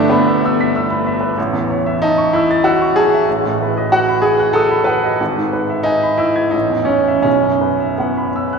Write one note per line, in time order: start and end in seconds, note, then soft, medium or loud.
0.00 1.33 G1 medium
0.00 1.39 G2 medium
0.00 1.39 A3 medium
0.00 1.39 D4 loud
0.00 1.21 B4 soft
0.00 0.21 E5 soft
0.10 1.36 B3 medium
0.10 0.36 B5 medium
0.28 0.52 E5 medium
0.45 0.69 E6 medium
0.60 0.84 B6 soft
0.76 1.00 E6 soft
0.90 1.15 B5 medium
1.07 1.31 E5 soft
1.21 1.37 B4 soft
1.38 3.23 A1 medium
1.53 1.78 E2 soft
1.70 1.95 C#5 soft
1.86 2.11 E5 medium
2.02 2.32 D#4 medium
2.02 2.27 A5 soft
2.18 2.42 C#6 medium
2.33 2.64 E4 medium
2.33 2.58 E6 medium
2.51 2.74 A6 medium
2.64 2.95 F#4 medium
2.64 2.89 E6 medium
2.82 3.06 C#6 medium
2.96 3.27 G#4 medium
2.96 3.22 A5 soft
3.14 3.28 E5 soft
3.28 5.17 A1 medium
3.45 3.70 A2 soft
3.62 3.87 B4 soft
3.77 4.02 D#5 soft
3.92 4.24 F#4 medium
3.92 4.18 F#5 medium
4.09 4.34 B5 medium
4.22 4.54 G#4 medium
4.22 4.49 D#6 soft
4.39 4.65 F#6 soft
4.53 4.86 A4 medium
4.53 4.81 D#6 medium
4.71 4.97 B5 soft
4.84 5.18 B4 medium
4.84 5.13 F#5 soft
5.04 5.20 D#5 soft
5.20 6.50 G#1 medium
5.37 5.63 G#2 soft
5.53 5.80 B4 soft
5.70 5.96 E5 soft
5.83 6.18 D#4 medium
5.83 6.13 G#5 soft
6.03 6.30 B5 soft
6.18 6.53 E4 medium
6.18 6.47 E6 soft
6.36 6.54 G#6 soft
6.51 7.23 A1 soft
6.51 6.88 D#4 medium
6.70 6.99 E2 soft
6.85 7.21 C#4 medium
6.85 7.18 C#5 soft
7.08 7.26 E5 soft
7.22 8.59 B1 soft
7.22 7.98 C#4 medium
7.42 7.73 F#2 soft
7.61 7.91 B4 soft
7.80 8.10 E5 soft
7.98 8.59 B3 medium
7.98 8.28 F#5 soft
8.17 8.46 B5 soft
8.36 8.59 E6 soft
8.53 8.59 F#6 soft